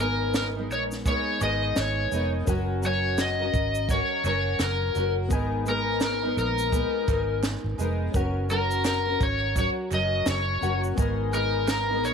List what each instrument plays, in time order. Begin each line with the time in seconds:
Already playing: fingered electric bass G#1, reed electric piano B3 A#4 G#5
0.00 steel-string acoustic guitar G#3 B3 D#4 A#4, electric slide guitar A#4
0.34 electric slide guitar A#4, snare, clap, shaker
0.55 steel-string acoustic guitar G#3 B3 D#4 A#4
0.71 fingered electric bass A#1, electric slide guitar C#5, shaker
0.92 snare, shaker
1.05 steel-string acoustic guitar G#3 B3 D#4 A#4, electric slide guitar C#5, kick, shaker
1.40 fingered electric bass G#1, steel-string acoustic guitar G#3 B3 D#4 A#4, electric slide guitar D#5, clap, shaker
1.76 fingered electric bass G#1, snare, clap, shaker
1.80 electric slide guitar C#5
2.11 fingered electric bass F1, steel-string acoustic guitar G#3 B3 D#4 A#4, shaker
2.46 fingered electric bass F#1, steel-string acoustic guitar F#3 C#4 F#4 A#4, reed electric piano C#4 A#4 F#5, kick, shaker
2.82 steel-string acoustic guitar F#3 C#4 F#4 A#4, shaker
2.86 electric slide guitar C#5
3.18 electric slide guitar D#5, snare, clap, shaker
3.39 steel-string acoustic guitar C#4 F#4 A#4
3.53 fingered electric bass G#1, kick, shaker
3.75 shaker
3.89 steel-string acoustic guitar F#3 C#4 F#4 A#4, electric slide guitar C#5, kick, shaker
4.24 fingered electric bass F#1, steel-string acoustic guitar F#3 C#4 F#4 A#4, electric slide guitar C#5, clap, shaker
4.59 fingered electric bass F#1, electric slide guitar A#4, snare, clap, shaker
4.94 fingered electric bass F#1, steel-string acoustic guitar F#3 C#4 F#4 A#4, shaker
5.28 fingered electric bass G#1, steel-string acoustic guitar G#3 B3 D#4, reed electric piano B3 A#4, kick, shaker
5.33 steel-string acoustic guitar A#4, reed electric piano G#5
5.66 steel-string acoustic guitar G#3 B3 D#4 A#4, electric slide guitar A#4, shaker
6.00 electric slide guitar A#4, snare, clap, shaker
6.22 steel-string acoustic guitar G#3 B3 D#4 A#4
6.37 fingered electric bass A#1, electric slide guitar A#4, shaker
6.58 shaker
6.72 steel-string acoustic guitar G#3 B3 D#4 A#4, kick, shaker
7.07 fingered electric bass G#1, steel-string acoustic guitar G#3 B3 D#4 A#4, kick, clap, shaker
7.43 snare, clap, shaker
7.64 fingered electric bass G#1
7.78 fingered electric bass F1, steel-string acoustic guitar G#3 B3 D#4 A#4, shaker
8.12 fingered electric bass F#1, steel-string acoustic guitar F#3 C#4, reed electric piano C#4 A#4, kick, shaker
8.16 steel-string acoustic guitar F#4 A#4, reed electric piano F#5
8.49 steel-string acoustic guitar F#3 C#4 F#4 A#4, electric slide guitar A#4, shaker
8.71 shaker
8.84 electric slide guitar A#4, snare, clap, shaker
9.06 steel-string acoustic guitar C#4 F#4 A#4
9.21 fingered electric bass G#1, electric slide guitar C#5, kick, shaker
9.55 steel-string acoustic guitar F#3 C#4 F#4 A#4, electric slide guitar C#5, kick, shaker
9.90 fingered electric bass F#1, steel-string acoustic guitar F#3 C#4 F#4 A#4, electric slide guitar D#5, clap, shaker
10.26 fingered electric bass F#1, electric slide guitar C#5, snare, clap, shaker
10.61 fingered electric bass F#1, steel-string acoustic guitar F#3 C#4 F#4 A#4, reed electric piano C#4 A#4 F#5, shaker
10.84 shaker
10.95 fingered electric bass G#1, steel-string acoustic guitar G#3 B3 D#4, reed electric piano B3 A#4, kick, shaker
11.00 steel-string acoustic guitar A#4, reed electric piano G#5
11.31 steel-string acoustic guitar G#3 B3 D#4 A#4, electric slide guitar A#4, shaker
11.68 electric slide guitar A#4, snare, clap, shaker
11.88 steel-string acoustic guitar G#3 B3 D#4 A#4
12.04 fingered electric bass A#1, electric slide guitar C#5, shaker